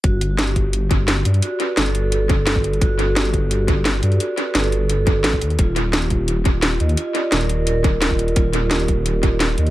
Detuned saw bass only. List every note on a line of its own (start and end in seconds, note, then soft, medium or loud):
0.04 1.24 G1 loud
1.26 1.41 G2 medium
1.78 2.80 G1 medium
2.81 4.02 G1 loud
4.03 4.19 G2 medium
4.55 5.26 G1 medium
5.24 5.43 A1 medium
5.41 5.57 D#2 loud
5.59 6.79 D#1 loud
6.81 6.96 D#2 medium
7.32 8.35 D#1 medium
8.36 9.57 D#1 loud
9.58 9.70 D#2 medium